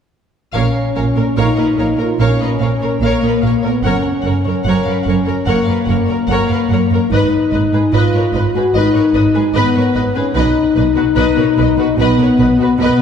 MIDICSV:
0, 0, Header, 1, 7, 480
1, 0, Start_track
1, 0, Tempo, 821918
1, 318, Time_signature, 4, 2, 24, 8
1, 4155, Tempo, 814111
1, 7636, End_track
2, 0, Start_track
2, 0, Title_t, "Violin section"
2, 0, Program_c, 0, 48
2, 308, Note_on_c, 0, 77, 34
2, 426, Note_off_c, 0, 77, 0
2, 557, Note_on_c, 0, 77, 24
2, 604, Note_off_c, 0, 77, 0
2, 674, Note_on_c, 0, 73, 22
2, 721, Note_off_c, 0, 73, 0
2, 805, Note_on_c, 0, 77, 35
2, 913, Note_on_c, 0, 75, 28
2, 916, Note_off_c, 0, 77, 0
2, 960, Note_off_c, 0, 75, 0
2, 1049, Note_on_c, 0, 77, 25
2, 1095, Note_off_c, 0, 77, 0
2, 1165, Note_on_c, 0, 73, 28
2, 1212, Note_off_c, 0, 73, 0
2, 1279, Note_on_c, 0, 77, 39
2, 1392, Note_off_c, 0, 77, 0
2, 1407, Note_on_c, 0, 75, 27
2, 1453, Note_off_c, 0, 75, 0
2, 1513, Note_on_c, 0, 77, 32
2, 1560, Note_off_c, 0, 77, 0
2, 1642, Note_on_c, 0, 73, 30
2, 1689, Note_off_c, 0, 73, 0
2, 1761, Note_on_c, 0, 77, 36
2, 1873, Note_off_c, 0, 77, 0
2, 1874, Note_on_c, 0, 75, 30
2, 1921, Note_off_c, 0, 75, 0
2, 1995, Note_on_c, 0, 77, 29
2, 2042, Note_off_c, 0, 77, 0
2, 2112, Note_on_c, 0, 73, 35
2, 2159, Note_off_c, 0, 73, 0
2, 2232, Note_on_c, 0, 78, 36
2, 2346, Note_off_c, 0, 78, 0
2, 2461, Note_on_c, 0, 78, 25
2, 2508, Note_off_c, 0, 78, 0
2, 2593, Note_on_c, 0, 73, 25
2, 2640, Note_off_c, 0, 73, 0
2, 2704, Note_on_c, 0, 78, 38
2, 2818, Note_on_c, 0, 77, 29
2, 2821, Note_off_c, 0, 78, 0
2, 2864, Note_off_c, 0, 77, 0
2, 2937, Note_on_c, 0, 78, 31
2, 2983, Note_off_c, 0, 78, 0
2, 3066, Note_on_c, 0, 73, 29
2, 3113, Note_off_c, 0, 73, 0
2, 3182, Note_on_c, 0, 78, 39
2, 3292, Note_on_c, 0, 77, 30
2, 3298, Note_off_c, 0, 78, 0
2, 3338, Note_off_c, 0, 77, 0
2, 3415, Note_on_c, 0, 78, 29
2, 3462, Note_off_c, 0, 78, 0
2, 3537, Note_on_c, 0, 73, 30
2, 3583, Note_off_c, 0, 73, 0
2, 3660, Note_on_c, 0, 78, 40
2, 3776, Note_off_c, 0, 78, 0
2, 3778, Note_on_c, 0, 77, 34
2, 3824, Note_off_c, 0, 77, 0
2, 3906, Note_on_c, 0, 78, 30
2, 3953, Note_off_c, 0, 78, 0
2, 4039, Note_on_c, 0, 73, 31
2, 4086, Note_off_c, 0, 73, 0
2, 4156, Note_on_c, 0, 75, 40
2, 4267, Note_off_c, 0, 75, 0
2, 4388, Note_on_c, 0, 75, 29
2, 4435, Note_off_c, 0, 75, 0
2, 4521, Note_on_c, 0, 71, 29
2, 4567, Note_off_c, 0, 71, 0
2, 4638, Note_on_c, 0, 75, 42
2, 4748, Note_off_c, 0, 75, 0
2, 4763, Note_on_c, 0, 73, 31
2, 4809, Note_off_c, 0, 73, 0
2, 4870, Note_on_c, 0, 75, 31
2, 4917, Note_off_c, 0, 75, 0
2, 5001, Note_on_c, 0, 71, 31
2, 5047, Note_off_c, 0, 71, 0
2, 5108, Note_on_c, 0, 75, 45
2, 5222, Note_off_c, 0, 75, 0
2, 5224, Note_on_c, 0, 73, 32
2, 5271, Note_off_c, 0, 73, 0
2, 5349, Note_on_c, 0, 75, 34
2, 5396, Note_off_c, 0, 75, 0
2, 5468, Note_on_c, 0, 71, 35
2, 5515, Note_off_c, 0, 71, 0
2, 5586, Note_on_c, 0, 75, 47
2, 5700, Note_off_c, 0, 75, 0
2, 5715, Note_on_c, 0, 73, 35
2, 5762, Note_off_c, 0, 73, 0
2, 5826, Note_on_c, 0, 75, 34
2, 5873, Note_off_c, 0, 75, 0
2, 5953, Note_on_c, 0, 71, 35
2, 6000, Note_off_c, 0, 71, 0
2, 6072, Note_on_c, 0, 75, 46
2, 6182, Note_off_c, 0, 75, 0
2, 6312, Note_on_c, 0, 75, 31
2, 6360, Note_off_c, 0, 75, 0
2, 6430, Note_on_c, 0, 71, 27
2, 6477, Note_off_c, 0, 71, 0
2, 6552, Note_on_c, 0, 75, 49
2, 6662, Note_off_c, 0, 75, 0
2, 6673, Note_on_c, 0, 73, 34
2, 6720, Note_off_c, 0, 73, 0
2, 6808, Note_on_c, 0, 75, 36
2, 6852, Note_off_c, 0, 75, 0
2, 6922, Note_on_c, 0, 71, 36
2, 6967, Note_off_c, 0, 71, 0
2, 7044, Note_on_c, 0, 75, 52
2, 7149, Note_off_c, 0, 75, 0
2, 7164, Note_on_c, 0, 73, 39
2, 7209, Note_off_c, 0, 73, 0
2, 7281, Note_on_c, 0, 75, 32
2, 7327, Note_off_c, 0, 75, 0
2, 7401, Note_on_c, 0, 71, 38
2, 7447, Note_off_c, 0, 71, 0
2, 7522, Note_on_c, 0, 75, 45
2, 7629, Note_off_c, 0, 75, 0
2, 7636, End_track
3, 0, Start_track
3, 0, Title_t, "Violin section"
3, 0, Program_c, 1, 48
3, 316, Note_on_c, 1, 73, 33
3, 430, Note_off_c, 1, 73, 0
3, 559, Note_on_c, 1, 73, 27
3, 605, Note_off_c, 1, 73, 0
3, 683, Note_on_c, 1, 70, 24
3, 730, Note_off_c, 1, 70, 0
3, 800, Note_on_c, 1, 73, 35
3, 913, Note_off_c, 1, 73, 0
3, 925, Note_on_c, 1, 71, 25
3, 972, Note_off_c, 1, 71, 0
3, 1046, Note_on_c, 1, 73, 26
3, 1093, Note_off_c, 1, 73, 0
3, 1156, Note_on_c, 1, 70, 28
3, 1203, Note_off_c, 1, 70, 0
3, 1286, Note_on_c, 1, 73, 38
3, 1396, Note_off_c, 1, 73, 0
3, 1412, Note_on_c, 1, 71, 26
3, 1458, Note_off_c, 1, 71, 0
3, 1531, Note_on_c, 1, 73, 27
3, 1578, Note_off_c, 1, 73, 0
3, 1646, Note_on_c, 1, 70, 28
3, 1693, Note_off_c, 1, 70, 0
3, 1782, Note_on_c, 1, 73, 43
3, 1884, Note_off_c, 1, 73, 0
3, 1910, Note_on_c, 1, 71, 30
3, 1952, Note_off_c, 1, 71, 0
3, 2022, Note_on_c, 1, 73, 33
3, 2066, Note_off_c, 1, 73, 0
3, 2143, Note_on_c, 1, 70, 28
3, 2186, Note_off_c, 1, 70, 0
3, 2246, Note_on_c, 1, 73, 40
3, 2354, Note_off_c, 1, 73, 0
3, 2491, Note_on_c, 1, 73, 24
3, 2536, Note_off_c, 1, 73, 0
3, 2619, Note_on_c, 1, 70, 25
3, 2663, Note_off_c, 1, 70, 0
3, 2735, Note_on_c, 1, 73, 35
3, 2838, Note_off_c, 1, 73, 0
3, 2853, Note_on_c, 1, 71, 32
3, 2897, Note_off_c, 1, 71, 0
3, 2973, Note_on_c, 1, 73, 30
3, 3017, Note_off_c, 1, 73, 0
3, 3085, Note_on_c, 1, 70, 27
3, 3130, Note_off_c, 1, 70, 0
3, 3203, Note_on_c, 1, 73, 37
3, 3309, Note_off_c, 1, 73, 0
3, 3324, Note_on_c, 1, 71, 28
3, 3369, Note_off_c, 1, 71, 0
3, 3441, Note_on_c, 1, 73, 31
3, 3486, Note_off_c, 1, 73, 0
3, 3558, Note_on_c, 1, 70, 28
3, 3604, Note_off_c, 1, 70, 0
3, 3690, Note_on_c, 1, 73, 43
3, 3792, Note_off_c, 1, 73, 0
3, 3805, Note_on_c, 1, 71, 34
3, 3850, Note_off_c, 1, 71, 0
3, 3930, Note_on_c, 1, 73, 32
3, 3975, Note_off_c, 1, 73, 0
3, 4052, Note_on_c, 1, 70, 32
3, 4096, Note_off_c, 1, 70, 0
3, 4179, Note_on_c, 1, 71, 37
3, 4279, Note_off_c, 1, 71, 0
3, 4398, Note_on_c, 1, 71, 25
3, 4445, Note_off_c, 1, 71, 0
3, 4520, Note_on_c, 1, 68, 25
3, 4567, Note_off_c, 1, 68, 0
3, 4638, Note_on_c, 1, 71, 40
3, 4747, Note_off_c, 1, 71, 0
3, 4764, Note_on_c, 1, 70, 29
3, 4810, Note_off_c, 1, 70, 0
3, 4883, Note_on_c, 1, 71, 33
3, 4929, Note_off_c, 1, 71, 0
3, 5007, Note_on_c, 1, 68, 27
3, 5053, Note_off_c, 1, 68, 0
3, 5121, Note_on_c, 1, 71, 41
3, 5229, Note_off_c, 1, 71, 0
3, 5241, Note_on_c, 1, 70, 30
3, 5287, Note_off_c, 1, 70, 0
3, 5349, Note_on_c, 1, 71, 30
3, 5397, Note_off_c, 1, 71, 0
3, 5472, Note_on_c, 1, 68, 32
3, 5519, Note_off_c, 1, 68, 0
3, 5595, Note_on_c, 1, 71, 50
3, 5705, Note_off_c, 1, 71, 0
3, 5724, Note_on_c, 1, 70, 38
3, 5769, Note_off_c, 1, 70, 0
3, 5826, Note_on_c, 1, 71, 34
3, 5873, Note_off_c, 1, 71, 0
3, 5952, Note_on_c, 1, 68, 37
3, 6000, Note_off_c, 1, 68, 0
3, 6060, Note_on_c, 1, 71, 49
3, 6176, Note_off_c, 1, 71, 0
3, 6301, Note_on_c, 1, 71, 30
3, 6348, Note_off_c, 1, 71, 0
3, 6420, Note_on_c, 1, 66, 27
3, 6467, Note_off_c, 1, 66, 0
3, 6539, Note_on_c, 1, 71, 41
3, 6655, Note_off_c, 1, 71, 0
3, 6664, Note_on_c, 1, 70, 30
3, 6711, Note_off_c, 1, 70, 0
3, 6787, Note_on_c, 1, 71, 35
3, 6834, Note_off_c, 1, 71, 0
3, 6911, Note_on_c, 1, 66, 38
3, 6958, Note_off_c, 1, 66, 0
3, 7031, Note_on_c, 1, 71, 41
3, 7141, Note_on_c, 1, 70, 35
3, 7142, Note_off_c, 1, 71, 0
3, 7188, Note_off_c, 1, 70, 0
3, 7264, Note_on_c, 1, 71, 33
3, 7311, Note_off_c, 1, 71, 0
3, 7388, Note_on_c, 1, 66, 35
3, 7435, Note_off_c, 1, 66, 0
3, 7504, Note_on_c, 1, 71, 50
3, 7619, Note_off_c, 1, 71, 0
3, 7636, End_track
4, 0, Start_track
4, 0, Title_t, "Viola section"
4, 0, Program_c, 2, 48
4, 315, Note_on_c, 2, 70, 34
4, 429, Note_off_c, 2, 70, 0
4, 568, Note_on_c, 2, 70, 25
4, 615, Note_off_c, 2, 70, 0
4, 677, Note_on_c, 2, 70, 28
4, 724, Note_off_c, 2, 70, 0
4, 801, Note_on_c, 2, 70, 39
4, 914, Note_off_c, 2, 70, 0
4, 923, Note_on_c, 2, 70, 29
4, 970, Note_off_c, 2, 70, 0
4, 1041, Note_on_c, 2, 70, 26
4, 1087, Note_off_c, 2, 70, 0
4, 1163, Note_on_c, 2, 70, 30
4, 1209, Note_off_c, 2, 70, 0
4, 1284, Note_on_c, 2, 70, 30
4, 1395, Note_off_c, 2, 70, 0
4, 1410, Note_on_c, 2, 70, 28
4, 1457, Note_off_c, 2, 70, 0
4, 1531, Note_on_c, 2, 70, 23
4, 1577, Note_off_c, 2, 70, 0
4, 1659, Note_on_c, 2, 70, 29
4, 1703, Note_off_c, 2, 70, 0
4, 1775, Note_on_c, 2, 70, 42
4, 1880, Note_off_c, 2, 70, 0
4, 1896, Note_on_c, 2, 70, 27
4, 1941, Note_off_c, 2, 70, 0
4, 2011, Note_on_c, 2, 70, 28
4, 2057, Note_off_c, 2, 70, 0
4, 2130, Note_on_c, 2, 70, 31
4, 2176, Note_off_c, 2, 70, 0
4, 2246, Note_on_c, 2, 70, 37
4, 2354, Note_off_c, 2, 70, 0
4, 2488, Note_on_c, 2, 70, 27
4, 2534, Note_off_c, 2, 70, 0
4, 2614, Note_on_c, 2, 70, 29
4, 2659, Note_off_c, 2, 70, 0
4, 2728, Note_on_c, 2, 70, 38
4, 2834, Note_off_c, 2, 70, 0
4, 2852, Note_on_c, 2, 70, 29
4, 2897, Note_off_c, 2, 70, 0
4, 2964, Note_on_c, 2, 70, 31
4, 3010, Note_off_c, 2, 70, 0
4, 3075, Note_on_c, 2, 70, 33
4, 3121, Note_off_c, 2, 70, 0
4, 3191, Note_on_c, 2, 70, 39
4, 3303, Note_off_c, 2, 70, 0
4, 3318, Note_on_c, 2, 70, 29
4, 3364, Note_off_c, 2, 70, 0
4, 3444, Note_on_c, 2, 70, 29
4, 3489, Note_off_c, 2, 70, 0
4, 3564, Note_on_c, 2, 70, 29
4, 3609, Note_off_c, 2, 70, 0
4, 3684, Note_on_c, 2, 70, 44
4, 3789, Note_off_c, 2, 70, 0
4, 3813, Note_on_c, 2, 70, 28
4, 3856, Note_off_c, 2, 70, 0
4, 3927, Note_on_c, 2, 70, 29
4, 3972, Note_off_c, 2, 70, 0
4, 4047, Note_on_c, 2, 70, 32
4, 4092, Note_off_c, 2, 70, 0
4, 4155, Note_on_c, 2, 71, 39
4, 4266, Note_off_c, 2, 71, 0
4, 4404, Note_on_c, 2, 71, 26
4, 4450, Note_off_c, 2, 71, 0
4, 4524, Note_on_c, 2, 71, 31
4, 4570, Note_off_c, 2, 71, 0
4, 4652, Note_on_c, 2, 71, 40
4, 4755, Note_off_c, 2, 71, 0
4, 4774, Note_on_c, 2, 71, 29
4, 4818, Note_off_c, 2, 71, 0
4, 4895, Note_on_c, 2, 71, 31
4, 4938, Note_off_c, 2, 71, 0
4, 5017, Note_on_c, 2, 71, 32
4, 5061, Note_off_c, 2, 71, 0
4, 5128, Note_on_c, 2, 71, 38
4, 5226, Note_off_c, 2, 71, 0
4, 5233, Note_on_c, 2, 71, 35
4, 5281, Note_off_c, 2, 71, 0
4, 5358, Note_on_c, 2, 71, 28
4, 5405, Note_off_c, 2, 71, 0
4, 5470, Note_on_c, 2, 71, 35
4, 5517, Note_off_c, 2, 71, 0
4, 5590, Note_on_c, 2, 71, 47
4, 5695, Note_off_c, 2, 71, 0
4, 5703, Note_on_c, 2, 71, 34
4, 5750, Note_off_c, 2, 71, 0
4, 5821, Note_on_c, 2, 71, 32
4, 5868, Note_off_c, 2, 71, 0
4, 5941, Note_on_c, 2, 71, 33
4, 5988, Note_off_c, 2, 71, 0
4, 6051, Note_on_c, 2, 71, 41
4, 6171, Note_off_c, 2, 71, 0
4, 6304, Note_on_c, 2, 71, 32
4, 6352, Note_off_c, 2, 71, 0
4, 6424, Note_on_c, 2, 71, 33
4, 6471, Note_off_c, 2, 71, 0
4, 6533, Note_on_c, 2, 71, 45
4, 6650, Note_off_c, 2, 71, 0
4, 6657, Note_on_c, 2, 71, 35
4, 6704, Note_off_c, 2, 71, 0
4, 6785, Note_on_c, 2, 71, 36
4, 6832, Note_off_c, 2, 71, 0
4, 6916, Note_on_c, 2, 71, 36
4, 6963, Note_off_c, 2, 71, 0
4, 7032, Note_on_c, 2, 71, 49
4, 7143, Note_off_c, 2, 71, 0
4, 7155, Note_on_c, 2, 71, 38
4, 7202, Note_off_c, 2, 71, 0
4, 7281, Note_on_c, 2, 71, 28
4, 7327, Note_off_c, 2, 71, 0
4, 7403, Note_on_c, 2, 71, 38
4, 7448, Note_off_c, 2, 71, 0
4, 7527, Note_on_c, 2, 71, 46
4, 7631, Note_off_c, 2, 71, 0
4, 7636, End_track
5, 0, Start_track
5, 0, Title_t, "French horn section"
5, 0, Program_c, 3, 60
5, 326, Note_on_c, 3, 61, 45
5, 783, Note_off_c, 3, 61, 0
5, 803, Note_on_c, 3, 63, 50
5, 1164, Note_off_c, 3, 63, 0
5, 1177, Note_on_c, 3, 65, 40
5, 1288, Note_off_c, 3, 65, 0
5, 1295, Note_on_c, 3, 61, 49
5, 1768, Note_off_c, 3, 61, 0
5, 1769, Note_on_c, 3, 58, 43
5, 2116, Note_off_c, 3, 58, 0
5, 2130, Note_on_c, 3, 59, 38
5, 2245, Note_off_c, 3, 59, 0
5, 2245, Note_on_c, 3, 61, 50
5, 3197, Note_off_c, 3, 61, 0
5, 3202, Note_on_c, 3, 58, 47
5, 3673, Note_off_c, 3, 58, 0
5, 3686, Note_on_c, 3, 58, 49
5, 4149, Note_on_c, 3, 63, 51
5, 4151, Note_off_c, 3, 58, 0
5, 4622, Note_off_c, 3, 63, 0
5, 4637, Note_on_c, 3, 65, 52
5, 4996, Note_off_c, 3, 65, 0
5, 4998, Note_on_c, 3, 66, 47
5, 5116, Note_off_c, 3, 66, 0
5, 5122, Note_on_c, 3, 63, 55
5, 5496, Note_off_c, 3, 63, 0
5, 5596, Note_on_c, 3, 59, 54
5, 5946, Note_off_c, 3, 59, 0
5, 5950, Note_on_c, 3, 61, 44
5, 6070, Note_off_c, 3, 61, 0
5, 6070, Note_on_c, 3, 63, 61
5, 7010, Note_off_c, 3, 63, 0
5, 7026, Note_on_c, 3, 59, 61
5, 7509, Note_off_c, 3, 59, 0
5, 7515, Note_on_c, 3, 59, 51
5, 7636, Note_off_c, 3, 59, 0
5, 7636, End_track
6, 0, Start_track
6, 0, Title_t, "Cello section"
6, 0, Program_c, 4, 48
6, 317, Note_on_c, 4, 46, 36
6, 363, Note_off_c, 4, 46, 0
6, 561, Note_on_c, 4, 46, 25
6, 608, Note_off_c, 4, 46, 0
6, 679, Note_on_c, 4, 46, 30
6, 726, Note_off_c, 4, 46, 0
6, 796, Note_on_c, 4, 46, 42
6, 843, Note_off_c, 4, 46, 0
6, 921, Note_on_c, 4, 46, 28
6, 968, Note_off_c, 4, 46, 0
6, 1036, Note_on_c, 4, 46, 25
6, 1083, Note_off_c, 4, 46, 0
6, 1149, Note_on_c, 4, 46, 27
6, 1196, Note_off_c, 4, 46, 0
6, 1276, Note_on_c, 4, 46, 35
6, 1323, Note_off_c, 4, 46, 0
6, 1402, Note_on_c, 4, 46, 26
6, 1448, Note_off_c, 4, 46, 0
6, 1514, Note_on_c, 4, 46, 25
6, 1560, Note_off_c, 4, 46, 0
6, 1637, Note_on_c, 4, 46, 27
6, 1684, Note_off_c, 4, 46, 0
6, 1760, Note_on_c, 4, 46, 37
6, 1806, Note_off_c, 4, 46, 0
6, 1879, Note_on_c, 4, 46, 30
6, 1926, Note_off_c, 4, 46, 0
6, 1998, Note_on_c, 4, 46, 28
6, 2045, Note_off_c, 4, 46, 0
6, 2121, Note_on_c, 4, 46, 26
6, 2168, Note_off_c, 4, 46, 0
6, 2240, Note_on_c, 4, 42, 38
6, 2287, Note_off_c, 4, 42, 0
6, 2479, Note_on_c, 4, 42, 27
6, 2525, Note_off_c, 4, 42, 0
6, 2600, Note_on_c, 4, 42, 31
6, 2647, Note_off_c, 4, 42, 0
6, 2716, Note_on_c, 4, 42, 44
6, 2763, Note_off_c, 4, 42, 0
6, 2834, Note_on_c, 4, 42, 26
6, 2881, Note_off_c, 4, 42, 0
6, 2956, Note_on_c, 4, 42, 29
6, 3003, Note_off_c, 4, 42, 0
6, 3078, Note_on_c, 4, 42, 29
6, 3125, Note_off_c, 4, 42, 0
6, 3195, Note_on_c, 4, 42, 41
6, 3241, Note_off_c, 4, 42, 0
6, 3313, Note_on_c, 4, 42, 28
6, 3360, Note_off_c, 4, 42, 0
6, 3436, Note_on_c, 4, 42, 26
6, 3482, Note_off_c, 4, 42, 0
6, 3553, Note_on_c, 4, 42, 27
6, 3599, Note_off_c, 4, 42, 0
6, 3672, Note_on_c, 4, 42, 41
6, 3719, Note_off_c, 4, 42, 0
6, 3791, Note_on_c, 4, 42, 31
6, 3838, Note_off_c, 4, 42, 0
6, 3915, Note_on_c, 4, 42, 30
6, 3962, Note_off_c, 4, 42, 0
6, 4032, Note_on_c, 4, 42, 29
6, 4079, Note_off_c, 4, 42, 0
6, 4152, Note_on_c, 4, 44, 40
6, 4199, Note_off_c, 4, 44, 0
6, 4389, Note_on_c, 4, 44, 31
6, 4436, Note_off_c, 4, 44, 0
6, 4513, Note_on_c, 4, 44, 32
6, 4560, Note_off_c, 4, 44, 0
6, 4630, Note_on_c, 4, 44, 46
6, 4677, Note_off_c, 4, 44, 0
6, 4754, Note_on_c, 4, 44, 27
6, 4801, Note_off_c, 4, 44, 0
6, 4874, Note_on_c, 4, 44, 32
6, 4921, Note_off_c, 4, 44, 0
6, 4998, Note_on_c, 4, 44, 32
6, 5045, Note_off_c, 4, 44, 0
6, 5118, Note_on_c, 4, 44, 40
6, 5165, Note_off_c, 4, 44, 0
6, 5233, Note_on_c, 4, 44, 27
6, 5280, Note_off_c, 4, 44, 0
6, 5358, Note_on_c, 4, 44, 31
6, 5405, Note_off_c, 4, 44, 0
6, 5476, Note_on_c, 4, 44, 31
6, 5523, Note_off_c, 4, 44, 0
6, 5589, Note_on_c, 4, 44, 42
6, 5637, Note_off_c, 4, 44, 0
6, 5707, Note_on_c, 4, 44, 36
6, 5754, Note_off_c, 4, 44, 0
6, 5825, Note_on_c, 4, 44, 34
6, 5872, Note_off_c, 4, 44, 0
6, 5946, Note_on_c, 4, 44, 33
6, 5994, Note_off_c, 4, 44, 0
6, 6066, Note_on_c, 4, 47, 44
6, 6113, Note_off_c, 4, 47, 0
6, 6309, Note_on_c, 4, 47, 32
6, 6356, Note_off_c, 4, 47, 0
6, 6425, Note_on_c, 4, 47, 34
6, 6473, Note_off_c, 4, 47, 0
6, 6545, Note_on_c, 4, 47, 52
6, 6592, Note_off_c, 4, 47, 0
6, 6661, Note_on_c, 4, 47, 32
6, 6708, Note_off_c, 4, 47, 0
6, 6781, Note_on_c, 4, 47, 33
6, 6828, Note_off_c, 4, 47, 0
6, 6900, Note_on_c, 4, 47, 34
6, 6947, Note_off_c, 4, 47, 0
6, 7020, Note_on_c, 4, 47, 51
6, 7067, Note_off_c, 4, 47, 0
6, 7141, Note_on_c, 4, 47, 32
6, 7188, Note_off_c, 4, 47, 0
6, 7259, Note_on_c, 4, 47, 34
6, 7306, Note_off_c, 4, 47, 0
6, 7377, Note_on_c, 4, 47, 33
6, 7424, Note_off_c, 4, 47, 0
6, 7496, Note_on_c, 4, 47, 52
6, 7543, Note_off_c, 4, 47, 0
6, 7616, Note_on_c, 4, 47, 39
6, 7636, Note_off_c, 4, 47, 0
6, 7636, End_track
7, 0, Start_track
7, 0, Title_t, "Double bass section"
7, 0, Program_c, 5, 48
7, 315, Note_on_c, 5, 34, 39
7, 362, Note_off_c, 5, 34, 0
7, 564, Note_on_c, 5, 34, 28
7, 611, Note_off_c, 5, 34, 0
7, 806, Note_on_c, 5, 34, 43
7, 852, Note_off_c, 5, 34, 0
7, 1048, Note_on_c, 5, 34, 27
7, 1095, Note_off_c, 5, 34, 0
7, 1280, Note_on_c, 5, 34, 37
7, 1326, Note_off_c, 5, 34, 0
7, 1518, Note_on_c, 5, 34, 25
7, 1564, Note_off_c, 5, 34, 0
7, 1753, Note_on_c, 5, 34, 38
7, 1800, Note_off_c, 5, 34, 0
7, 1999, Note_on_c, 5, 34, 28
7, 2046, Note_off_c, 5, 34, 0
7, 2238, Note_on_c, 5, 30, 35
7, 2285, Note_off_c, 5, 30, 0
7, 2474, Note_on_c, 5, 30, 29
7, 2521, Note_off_c, 5, 30, 0
7, 2717, Note_on_c, 5, 30, 41
7, 2764, Note_off_c, 5, 30, 0
7, 2957, Note_on_c, 5, 30, 25
7, 3003, Note_off_c, 5, 30, 0
7, 3196, Note_on_c, 5, 30, 41
7, 3243, Note_off_c, 5, 30, 0
7, 3433, Note_on_c, 5, 30, 27
7, 3480, Note_off_c, 5, 30, 0
7, 3667, Note_on_c, 5, 30, 42
7, 3713, Note_off_c, 5, 30, 0
7, 3911, Note_on_c, 5, 30, 31
7, 3957, Note_off_c, 5, 30, 0
7, 4154, Note_on_c, 5, 32, 39
7, 4202, Note_off_c, 5, 32, 0
7, 4394, Note_on_c, 5, 32, 30
7, 4441, Note_off_c, 5, 32, 0
7, 4636, Note_on_c, 5, 32, 41
7, 4684, Note_off_c, 5, 32, 0
7, 4874, Note_on_c, 5, 32, 28
7, 4921, Note_off_c, 5, 32, 0
7, 5115, Note_on_c, 5, 32, 42
7, 5162, Note_off_c, 5, 32, 0
7, 5350, Note_on_c, 5, 32, 28
7, 5397, Note_off_c, 5, 32, 0
7, 5586, Note_on_c, 5, 32, 42
7, 5634, Note_off_c, 5, 32, 0
7, 5831, Note_on_c, 5, 32, 32
7, 5878, Note_off_c, 5, 32, 0
7, 6067, Note_on_c, 5, 35, 45
7, 6114, Note_off_c, 5, 35, 0
7, 6304, Note_on_c, 5, 35, 34
7, 6352, Note_off_c, 5, 35, 0
7, 6544, Note_on_c, 5, 35, 48
7, 6591, Note_off_c, 5, 35, 0
7, 6791, Note_on_c, 5, 35, 32
7, 6838, Note_off_c, 5, 35, 0
7, 7022, Note_on_c, 5, 35, 44
7, 7069, Note_off_c, 5, 35, 0
7, 7262, Note_on_c, 5, 35, 34
7, 7309, Note_off_c, 5, 35, 0
7, 7502, Note_on_c, 5, 35, 51
7, 7550, Note_off_c, 5, 35, 0
7, 7636, End_track
0, 0, End_of_file